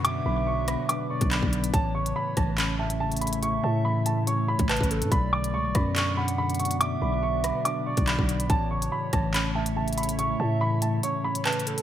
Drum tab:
HH |x-----------------------------------x-----------x-----------------x-----x-----------x-----x-----|x-----------------x-----------------x-----------x-----------------x-----------x--x--x--x--x-----|x-----------------------------------x-----------x-----------------x-----x---x---x---x-----x-----|x-----------------x-----------------x-----------x-----------------x-----------x--x--x--x--x-----|
CP |------------------------------------------------------------------------x-----------------------|------------------------------------------------x-----------------------------------------------|------------------------------------------------------------------------x-----------------------|------------------------------------------------x-----------------------------------------------|
SD |------------------------------------r-----------------------------------------------------------|------------------------------------r-----------------------------------------------------------|------------------------------------------------------------------------------------------------|------------------------------------r-----------------------------------------------------------|
BD |------------------------------------------------------------------o-----------o-----------------|o-----------------------------------o-----------------------------------------------------------|------------------------------------------------------------------o-----------o-----------------|o-----------------------------------o-----------------------------------------------------------|

HH |x-----------------------------------x-----------x-----------------x-----x-----------x-----x-----|x-----------------x-----------------x-----------x-----------------x-----------x--x--x--x--x-----|x-----------------------------------x-----------x-----------------x-----x---x---x---x-----x-----|
CP |------------------------------------------------------------------------x-----------------------|------------------------------------------------x-----------------------------------------------|------------------------------------------------------------------------x-----------------------|
SD |------------------------------------r-----------------------------------------------------------|------------------------------------r-----------------------------------------------------------|------------------------------------------------------------------------------------------------|
BD |------------------------------------------------------------------o-----------o-----------------|o-----------------------------------o-----------------------------------------------------------|------------------------------------------------------------------------------------------------|